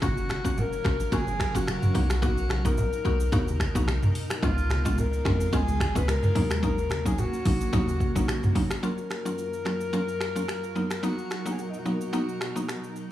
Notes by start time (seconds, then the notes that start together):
Already playing: C#4
0.02 F#1 F#3 A#3 C#4 F4 F#4 A#4 F5, kick, low conga, shaker
0.17 shaker
0.29 finger snap, cross-stick, high conga, shaker
0.44 A#3 C#4 F4 F#4, kick, shaker
0.57 A#4, low conga, shaker
0.73 shaker
0.84 A#1 A#3 C#4 F4 F#4, finger snap, kick, cross-stick, shaker
1.00 shaker
1.12 F#1 A#3 C#4 F4 F#4 G#4, kick, shaker
1.27 high conga, shaker
1.40 finger snap, kick, cross-stick, high conga, shaker
1.55 F#1 A#3 C#4 F4 F#4, shaker
1.67 finger snap, cross-stick, high conga, shaker
1.82 mid tom, high conga, shaker
1.94 B1 B2 A#3 B3 D#4 F#4 A#4, open hi-hat, shaker
2.10 finger snap, cross-stick, shaker
2.22 A#3 B3 D#4 F#4, kick, low conga, shaker
2.38 shaker
2.49 finger snap, cross-stick, high conga, shaker
2.65 A#3 B3 D#4 F#4 A#4, kick, shaker
2.78 low conga, shaker
2.93 shaker
3.05 B1 A#3 B3 D#4 F#4, shaker
3.20 shaker
3.32 D#2 A#3 B3 D#4 F#4, kick, shaker
3.47 high conga, shaker
3.60 finger snap, kick, cross-stick, high conga, shaker
3.75 B1 A#3 B3 D#4 F#4, shaker
3.88 finger snap, cross-stick, high conga, shaker
4.02 mid tom, high conga, shaker
4.15 open hi-hat, shaker
4.30 finger snap, cross-stick, shaker
4.42 C#2 C#3 G#3 B3 C#4 F4, kick, low conga, shaker
4.58 shaker
4.70 finger snap, cross-stick, high conga, shaker
4.85 G#3 B3 C#4 F4, kick, shaker
4.98 A#4, low conga, shaker
5.13 shaker
5.25 F2 G#3 B3 C#4 F4, finger snap, kick, cross-stick, shaker
5.40 shaker
5.53 C#2 G#3 B3 C#4 F4 G#4, kick, shaker
5.67 high conga, shaker
5.80 finger snap, kick, cross-stick, high conga, shaker
5.95 C#2 G#3 B3 C#4 F4 B4, shaker
6.08 A#4, finger snap, cross-stick, high conga, shaker
6.23 mid tom, high conga, shaker
6.35 D#2 D#3 F#3 A#3 C#4 D#4 F#4, open hi-hat, shaker
6.51 finger snap, cross-stick, shaker
6.63 F#3 A#3 C#4 D#4 A#4, kick, low conga, shaker
6.78 shaker
6.90 finger snap, cross-stick, high conga, shaker
7.05 F#3 A#3 C#4 D#4 G#4, kick, shaker
7.18 F#4, low conga, shaker
7.33 shaker
7.45 A#1 F#3 A#3 C#4 D#4, kick, open hi-hat, shaker
7.61 shaker
7.73 D#2 F#3 A#3 C#4 D#4, kick, shaker
7.88 high conga, shaker
8.00 kick, shaker
8.15 A#1 F#3 A#3 C#4 D#4, shaker
8.28 finger snap, cross-stick, high conga, shaker
8.43 mid tom, high conga, shaker
8.55 F#3 A#3 C#4 D#4, kick, open hi-hat, shaker
8.70 finger snap, cross-stick, shaker
8.83 F#2 F#3 A#3 C#4 F4 A#4, shaker
8.98 shaker
9.10 finger snap, cross-stick, shaker
9.25 F#3 A#3 C#4 F4, shaker
9.38 shaker
9.53 shaker
9.65 F#3 A#3 C#4 F4, finger snap, cross-stick, shaker
9.81 shaker
9.93 F#3 A#3 C#4 F4, shaker
10.08 shaker
10.21 finger snap, cross-stick, shaker
10.36 F#3 A#3 C#4 F4, shaker
10.48 finger snap, cross-stick, shaker
10.64 shaker
10.76 B2 F#3 A#3 B3 D#4, shaker
10.90 finger snap, cross-stick, shaker
11.03 F#3 A#3 B3 D#4 F#4, shaker
11.18 shaker
11.30 finger snap, cross-stick, shaker
11.46 F#3 A#3 B3 D#4, shaker
11.51 G#4
11.58 F#4, shaker
11.70 D#4
11.74 shaker
11.78 F#4
11.86 F#3 A#3 B3 D#4 F#4, shaker
12.01 shaker
12.13 F#3 A#3 B3 D#4, shaker
12.29 shaker
12.41 finger snap, cross-stick, shaker
12.55 F#3 A#3 B3 D#4, shaker
12.69 finger snap, cross-stick, shaker
12.84 shaker
12.96 shaker